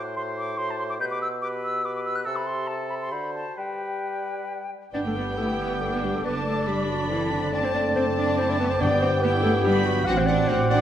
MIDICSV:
0, 0, Header, 1, 12, 480
1, 0, Start_track
1, 0, Key_signature, 1, "major"
1, 0, Tempo, 419874
1, 1144, Time_signature, 3, 2, 24, 8
1, 3071, Tempo, 449438
1, 5951, Tempo, 431344
1, 8831, Tempo, 420463
1, 12072, End_track
2, 0, Start_track
2, 0, Title_t, "Flute"
2, 0, Program_c, 0, 73
2, 183, Note_on_c, 0, 84, 71
2, 252, Note_off_c, 0, 84, 0
2, 429, Note_on_c, 0, 86, 74
2, 653, Note_on_c, 0, 84, 78
2, 670, Note_off_c, 0, 86, 0
2, 801, Note_on_c, 0, 81, 62
2, 819, Note_off_c, 0, 84, 0
2, 890, Note_off_c, 0, 81, 0
2, 897, Note_on_c, 0, 84, 76
2, 952, Note_off_c, 0, 84, 0
2, 1020, Note_on_c, 0, 86, 72
2, 1075, Note_off_c, 0, 86, 0
2, 1143, Note_on_c, 0, 91, 76
2, 1198, Note_off_c, 0, 91, 0
2, 1261, Note_on_c, 0, 86, 69
2, 1383, Note_off_c, 0, 86, 0
2, 1389, Note_on_c, 0, 88, 80
2, 1457, Note_off_c, 0, 88, 0
2, 1616, Note_on_c, 0, 86, 78
2, 1685, Note_off_c, 0, 86, 0
2, 1874, Note_on_c, 0, 88, 79
2, 2112, Note_on_c, 0, 86, 74
2, 2129, Note_off_c, 0, 88, 0
2, 2226, Note_off_c, 0, 86, 0
2, 2233, Note_on_c, 0, 86, 66
2, 2284, Note_off_c, 0, 86, 0
2, 2344, Note_on_c, 0, 88, 76
2, 2459, Note_on_c, 0, 90, 72
2, 2476, Note_off_c, 0, 88, 0
2, 2554, Note_off_c, 0, 90, 0
2, 2561, Note_on_c, 0, 88, 80
2, 2694, Note_on_c, 0, 83, 65
2, 2711, Note_off_c, 0, 88, 0
2, 2813, Note_on_c, 0, 84, 68
2, 2830, Note_off_c, 0, 83, 0
2, 3051, Note_on_c, 0, 81, 67
2, 3069, Note_off_c, 0, 84, 0
2, 3285, Note_off_c, 0, 81, 0
2, 3292, Note_on_c, 0, 83, 66
2, 3346, Note_off_c, 0, 83, 0
2, 3420, Note_on_c, 0, 84, 60
2, 3528, Note_on_c, 0, 83, 65
2, 3544, Note_off_c, 0, 84, 0
2, 3766, Note_off_c, 0, 83, 0
2, 3773, Note_on_c, 0, 81, 62
2, 4010, Note_off_c, 0, 81, 0
2, 4016, Note_on_c, 0, 79, 56
2, 5220, Note_off_c, 0, 79, 0
2, 5478, Note_on_c, 0, 86, 47
2, 8302, Note_off_c, 0, 86, 0
2, 8348, Note_on_c, 0, 86, 60
2, 10933, Note_off_c, 0, 86, 0
2, 11220, Note_on_c, 0, 86, 74
2, 12072, Note_off_c, 0, 86, 0
2, 12072, End_track
3, 0, Start_track
3, 0, Title_t, "Violin section"
3, 0, Program_c, 1, 48
3, 5482, Note_on_c, 1, 79, 49
3, 6868, Note_off_c, 1, 79, 0
3, 6915, Note_on_c, 1, 81, 54
3, 7389, Note_off_c, 1, 81, 0
3, 7392, Note_on_c, 1, 83, 51
3, 8339, Note_on_c, 1, 81, 61
3, 8351, Note_off_c, 1, 83, 0
3, 8813, Note_off_c, 1, 81, 0
3, 8839, Note_on_c, 1, 81, 60
3, 9779, Note_off_c, 1, 81, 0
3, 9796, Note_on_c, 1, 79, 65
3, 10267, Note_off_c, 1, 79, 0
3, 10281, Note_on_c, 1, 79, 64
3, 10750, Note_off_c, 1, 79, 0
3, 10764, Note_on_c, 1, 83, 67
3, 11225, Note_off_c, 1, 83, 0
3, 11232, Note_on_c, 1, 78, 76
3, 11323, Note_off_c, 1, 78, 0
3, 11465, Note_on_c, 1, 78, 59
3, 11557, Note_off_c, 1, 78, 0
3, 11708, Note_on_c, 1, 78, 60
3, 11799, Note_off_c, 1, 78, 0
3, 11946, Note_on_c, 1, 78, 64
3, 12038, Note_off_c, 1, 78, 0
3, 12072, End_track
4, 0, Start_track
4, 0, Title_t, "Oboe"
4, 0, Program_c, 2, 68
4, 0, Note_on_c, 2, 72, 54
4, 155, Note_off_c, 2, 72, 0
4, 190, Note_on_c, 2, 72, 55
4, 656, Note_off_c, 2, 72, 0
4, 662, Note_on_c, 2, 72, 52
4, 1133, Note_off_c, 2, 72, 0
4, 1145, Note_on_c, 2, 71, 56
4, 1497, Note_off_c, 2, 71, 0
4, 1640, Note_on_c, 2, 71, 58
4, 2100, Note_off_c, 2, 71, 0
4, 2109, Note_on_c, 2, 71, 51
4, 2581, Note_on_c, 2, 69, 57
4, 2598, Note_off_c, 2, 71, 0
4, 3068, Note_off_c, 2, 69, 0
4, 3073, Note_on_c, 2, 69, 52
4, 3523, Note_off_c, 2, 69, 0
4, 3530, Note_on_c, 2, 72, 46
4, 4017, Note_on_c, 2, 71, 50
4, 4033, Note_off_c, 2, 72, 0
4, 5245, Note_off_c, 2, 71, 0
4, 5484, Note_on_c, 2, 79, 56
4, 6869, Note_off_c, 2, 79, 0
4, 6917, Note_on_c, 2, 81, 59
4, 9795, Note_on_c, 2, 79, 75
4, 9812, Note_off_c, 2, 81, 0
4, 11222, Note_on_c, 2, 78, 84
4, 11240, Note_off_c, 2, 79, 0
4, 12072, Note_off_c, 2, 78, 0
4, 12072, End_track
5, 0, Start_track
5, 0, Title_t, "Clarinet"
5, 0, Program_c, 3, 71
5, 0, Note_on_c, 3, 66, 51
5, 160, Note_off_c, 3, 66, 0
5, 185, Note_on_c, 3, 66, 48
5, 653, Note_off_c, 3, 66, 0
5, 660, Note_on_c, 3, 66, 51
5, 1132, Note_off_c, 3, 66, 0
5, 1147, Note_on_c, 3, 67, 56
5, 1484, Note_off_c, 3, 67, 0
5, 1626, Note_on_c, 3, 67, 52
5, 2093, Note_off_c, 3, 67, 0
5, 2109, Note_on_c, 3, 67, 51
5, 2576, Note_off_c, 3, 67, 0
5, 2585, Note_on_c, 3, 67, 52
5, 3061, Note_off_c, 3, 67, 0
5, 3076, Note_on_c, 3, 67, 46
5, 3534, Note_on_c, 3, 66, 44
5, 3550, Note_off_c, 3, 67, 0
5, 4018, Note_on_c, 3, 67, 46
5, 4034, Note_off_c, 3, 66, 0
5, 5245, Note_off_c, 3, 67, 0
5, 5473, Note_on_c, 3, 74, 76
5, 5528, Note_off_c, 3, 74, 0
5, 5609, Note_on_c, 3, 69, 64
5, 5718, Note_on_c, 3, 71, 59
5, 5734, Note_off_c, 3, 69, 0
5, 5932, Note_off_c, 3, 71, 0
5, 5938, Note_on_c, 3, 69, 65
5, 6048, Note_off_c, 3, 69, 0
5, 6196, Note_on_c, 3, 71, 67
5, 6433, Note_on_c, 3, 69, 69
5, 6449, Note_off_c, 3, 71, 0
5, 6563, Note_on_c, 3, 71, 64
5, 6579, Note_off_c, 3, 69, 0
5, 6688, Note_on_c, 3, 67, 70
5, 6704, Note_off_c, 3, 71, 0
5, 6810, Note_on_c, 3, 69, 63
5, 6826, Note_off_c, 3, 67, 0
5, 6915, Note_off_c, 3, 69, 0
5, 6921, Note_on_c, 3, 71, 80
5, 7026, Note_off_c, 3, 71, 0
5, 7157, Note_on_c, 3, 69, 72
5, 7396, Note_on_c, 3, 67, 71
5, 7413, Note_off_c, 3, 69, 0
5, 7636, Note_on_c, 3, 66, 77
5, 7653, Note_off_c, 3, 67, 0
5, 7862, Note_off_c, 3, 66, 0
5, 7868, Note_on_c, 3, 64, 76
5, 8104, Note_on_c, 3, 62, 76
5, 8121, Note_off_c, 3, 64, 0
5, 8331, Note_off_c, 3, 62, 0
5, 8338, Note_on_c, 3, 74, 93
5, 8471, Note_on_c, 3, 72, 80
5, 8488, Note_off_c, 3, 74, 0
5, 8577, Note_on_c, 3, 74, 91
5, 8593, Note_off_c, 3, 72, 0
5, 8811, Note_off_c, 3, 74, 0
5, 8817, Note_on_c, 3, 72, 83
5, 8928, Note_off_c, 3, 72, 0
5, 9063, Note_on_c, 3, 74, 94
5, 9292, Note_off_c, 3, 74, 0
5, 9299, Note_on_c, 3, 72, 93
5, 9442, Note_on_c, 3, 74, 78
5, 9459, Note_off_c, 3, 72, 0
5, 9541, Note_off_c, 3, 74, 0
5, 9547, Note_on_c, 3, 71, 90
5, 9661, Note_on_c, 3, 72, 72
5, 9678, Note_off_c, 3, 71, 0
5, 9779, Note_on_c, 3, 74, 108
5, 9796, Note_off_c, 3, 72, 0
5, 10004, Note_off_c, 3, 74, 0
5, 10011, Note_on_c, 3, 72, 97
5, 10249, Note_off_c, 3, 72, 0
5, 10256, Note_on_c, 3, 71, 86
5, 10369, Note_off_c, 3, 71, 0
5, 10493, Note_on_c, 3, 69, 98
5, 10607, Note_off_c, 3, 69, 0
5, 10730, Note_on_c, 3, 67, 94
5, 10843, Note_off_c, 3, 67, 0
5, 10969, Note_on_c, 3, 66, 93
5, 11210, Note_on_c, 3, 78, 114
5, 11227, Note_off_c, 3, 66, 0
5, 11357, Note_on_c, 3, 72, 99
5, 11374, Note_off_c, 3, 78, 0
5, 11451, Note_on_c, 3, 74, 103
5, 11468, Note_off_c, 3, 72, 0
5, 11699, Note_on_c, 3, 72, 106
5, 11716, Note_off_c, 3, 74, 0
5, 11940, Note_off_c, 3, 72, 0
5, 11947, Note_on_c, 3, 74, 106
5, 12072, Note_off_c, 3, 74, 0
5, 12072, End_track
6, 0, Start_track
6, 0, Title_t, "French horn section"
6, 0, Program_c, 4, 60
6, 5486, Note_on_c, 4, 62, 55
6, 5491, Note_on_c, 4, 67, 55
6, 6872, Note_off_c, 4, 67, 0
6, 6923, Note_on_c, 4, 69, 60
6, 8306, Note_off_c, 4, 62, 0
6, 8339, Note_on_c, 4, 60, 65
6, 9752, Note_off_c, 4, 69, 0
6, 9758, Note_off_c, 4, 60, 0
6, 9780, Note_on_c, 4, 67, 78
6, 9781, Note_on_c, 4, 59, 75
6, 11196, Note_off_c, 4, 59, 0
6, 11196, Note_off_c, 4, 67, 0
6, 11234, Note_on_c, 4, 60, 78
6, 11234, Note_on_c, 4, 66, 80
6, 12072, Note_off_c, 4, 60, 0
6, 12072, Note_off_c, 4, 66, 0
6, 12072, End_track
7, 0, Start_track
7, 0, Title_t, "Violin section"
7, 0, Program_c, 5, 48
7, 5488, Note_on_c, 5, 59, 49
7, 6388, Note_off_c, 5, 59, 0
7, 6436, Note_on_c, 5, 62, 46
7, 6906, Note_off_c, 5, 62, 0
7, 6921, Note_on_c, 5, 62, 52
7, 7852, Note_off_c, 5, 62, 0
7, 7870, Note_on_c, 5, 60, 54
7, 8351, Note_off_c, 5, 60, 0
7, 8351, Note_on_c, 5, 62, 56
7, 9291, Note_off_c, 5, 62, 0
7, 9316, Note_on_c, 5, 64, 61
7, 9795, Note_off_c, 5, 64, 0
7, 9795, Note_on_c, 5, 62, 61
7, 10260, Note_off_c, 5, 62, 0
7, 10273, Note_on_c, 5, 62, 68
7, 10746, Note_off_c, 5, 62, 0
7, 10756, Note_on_c, 5, 59, 65
7, 11229, Note_on_c, 5, 62, 73
7, 11230, Note_off_c, 5, 59, 0
7, 11320, Note_off_c, 5, 62, 0
7, 11477, Note_on_c, 5, 62, 65
7, 11569, Note_off_c, 5, 62, 0
7, 11715, Note_on_c, 5, 62, 66
7, 11806, Note_off_c, 5, 62, 0
7, 11953, Note_on_c, 5, 62, 64
7, 12044, Note_off_c, 5, 62, 0
7, 12072, End_track
8, 0, Start_track
8, 0, Title_t, "Viola section"
8, 0, Program_c, 6, 48
8, 5485, Note_on_c, 6, 62, 47
8, 5918, Note_off_c, 6, 62, 0
8, 5951, Note_on_c, 6, 64, 47
8, 6431, Note_off_c, 6, 64, 0
8, 6431, Note_on_c, 6, 62, 50
8, 6904, Note_off_c, 6, 62, 0
8, 6921, Note_on_c, 6, 62, 56
8, 8325, Note_off_c, 6, 62, 0
8, 8345, Note_on_c, 6, 57, 67
8, 9761, Note_off_c, 6, 57, 0
8, 9785, Note_on_c, 6, 59, 64
8, 10264, Note_off_c, 6, 59, 0
8, 10279, Note_on_c, 6, 64, 70
8, 10748, Note_off_c, 6, 64, 0
8, 10749, Note_on_c, 6, 62, 66
8, 11226, Note_off_c, 6, 62, 0
8, 11235, Note_on_c, 6, 60, 69
8, 11326, Note_off_c, 6, 60, 0
8, 11481, Note_on_c, 6, 60, 60
8, 11572, Note_off_c, 6, 60, 0
8, 11725, Note_on_c, 6, 60, 60
8, 11816, Note_off_c, 6, 60, 0
8, 11950, Note_on_c, 6, 60, 66
8, 12041, Note_off_c, 6, 60, 0
8, 12072, End_track
9, 0, Start_track
9, 0, Title_t, "Cello section"
9, 0, Program_c, 7, 48
9, 5480, Note_on_c, 7, 62, 65
9, 5527, Note_off_c, 7, 62, 0
9, 5596, Note_on_c, 7, 57, 52
9, 5644, Note_off_c, 7, 57, 0
9, 5718, Note_on_c, 7, 59, 47
9, 5803, Note_off_c, 7, 59, 0
9, 5947, Note_on_c, 7, 57, 61
9, 6183, Note_off_c, 7, 57, 0
9, 6192, Note_on_c, 7, 59, 56
9, 6423, Note_on_c, 7, 57, 62
9, 6426, Note_off_c, 7, 59, 0
9, 6545, Note_off_c, 7, 57, 0
9, 6547, Note_on_c, 7, 59, 56
9, 6665, Note_on_c, 7, 55, 52
9, 6667, Note_off_c, 7, 59, 0
9, 6788, Note_on_c, 7, 57, 56
9, 6789, Note_off_c, 7, 55, 0
9, 6910, Note_off_c, 7, 57, 0
9, 6913, Note_on_c, 7, 59, 65
9, 7148, Note_on_c, 7, 57, 60
9, 7150, Note_off_c, 7, 59, 0
9, 7382, Note_off_c, 7, 57, 0
9, 7388, Note_on_c, 7, 55, 65
9, 7625, Note_on_c, 7, 54, 60
9, 7627, Note_off_c, 7, 55, 0
9, 7864, Note_on_c, 7, 52, 64
9, 7866, Note_off_c, 7, 54, 0
9, 8106, Note_off_c, 7, 52, 0
9, 8108, Note_on_c, 7, 50, 60
9, 8344, Note_on_c, 7, 62, 78
9, 8350, Note_off_c, 7, 50, 0
9, 8393, Note_off_c, 7, 62, 0
9, 8456, Note_on_c, 7, 60, 64
9, 8507, Note_off_c, 7, 60, 0
9, 8582, Note_on_c, 7, 62, 67
9, 8671, Note_off_c, 7, 62, 0
9, 8816, Note_on_c, 7, 60, 77
9, 8907, Note_off_c, 7, 60, 0
9, 9064, Note_on_c, 7, 62, 73
9, 9297, Note_on_c, 7, 60, 77
9, 9302, Note_off_c, 7, 62, 0
9, 9418, Note_on_c, 7, 62, 73
9, 9423, Note_off_c, 7, 60, 0
9, 9539, Note_on_c, 7, 59, 76
9, 9542, Note_off_c, 7, 62, 0
9, 9656, Note_on_c, 7, 60, 64
9, 9663, Note_off_c, 7, 59, 0
9, 9708, Note_off_c, 7, 60, 0
9, 9778, Note_on_c, 7, 62, 88
9, 9869, Note_off_c, 7, 62, 0
9, 10021, Note_on_c, 7, 60, 76
9, 10113, Note_off_c, 7, 60, 0
9, 10269, Note_on_c, 7, 59, 82
9, 10360, Note_off_c, 7, 59, 0
9, 10505, Note_on_c, 7, 57, 76
9, 10596, Note_off_c, 7, 57, 0
9, 10746, Note_on_c, 7, 55, 86
9, 10984, Note_off_c, 7, 55, 0
9, 10987, Note_on_c, 7, 54, 80
9, 11225, Note_on_c, 7, 66, 97
9, 11227, Note_off_c, 7, 54, 0
9, 11274, Note_off_c, 7, 66, 0
9, 11339, Note_on_c, 7, 60, 80
9, 11462, Note_off_c, 7, 60, 0
9, 11469, Note_on_c, 7, 62, 88
9, 11706, Note_off_c, 7, 62, 0
9, 11707, Note_on_c, 7, 60, 86
9, 11947, Note_on_c, 7, 62, 89
9, 11949, Note_off_c, 7, 60, 0
9, 12072, Note_off_c, 7, 62, 0
9, 12072, End_track
10, 0, Start_track
10, 0, Title_t, "Bassoon"
10, 0, Program_c, 8, 70
10, 0, Note_on_c, 8, 45, 54
10, 1145, Note_on_c, 8, 47, 56
10, 1162, Note_off_c, 8, 45, 0
10, 2583, Note_off_c, 8, 47, 0
10, 2588, Note_on_c, 8, 48, 57
10, 3538, Note_on_c, 8, 50, 50
10, 3554, Note_off_c, 8, 48, 0
10, 3884, Note_off_c, 8, 50, 0
10, 4027, Note_on_c, 8, 55, 47
10, 5225, Note_off_c, 8, 55, 0
10, 5478, Note_on_c, 8, 59, 51
10, 6912, Note_on_c, 8, 62, 51
10, 6929, Note_off_c, 8, 59, 0
10, 8343, Note_off_c, 8, 62, 0
10, 8350, Note_on_c, 8, 60, 56
10, 9763, Note_off_c, 8, 60, 0
10, 9790, Note_on_c, 8, 59, 67
10, 11201, Note_off_c, 8, 59, 0
10, 11237, Note_on_c, 8, 60, 75
10, 12072, Note_off_c, 8, 60, 0
10, 12072, End_track
11, 0, Start_track
11, 0, Title_t, "Timpani"
11, 0, Program_c, 10, 47
11, 9798, Note_on_c, 10, 43, 80
11, 10475, Note_off_c, 10, 43, 0
11, 12072, End_track
12, 0, Start_track
12, 0, Title_t, "Double bass section"
12, 0, Program_c, 11, 48
12, 5481, Note_on_c, 11, 31, 51
12, 6867, Note_off_c, 11, 31, 0
12, 6901, Note_on_c, 11, 30, 59
12, 9741, Note_off_c, 11, 30, 0
12, 9794, Note_on_c, 11, 31, 74
12, 11232, Note_off_c, 11, 31, 0
12, 11236, Note_on_c, 11, 33, 81
12, 11657, Note_off_c, 11, 33, 0
12, 11708, Note_on_c, 11, 33, 80
12, 12072, Note_off_c, 11, 33, 0
12, 12072, End_track
0, 0, End_of_file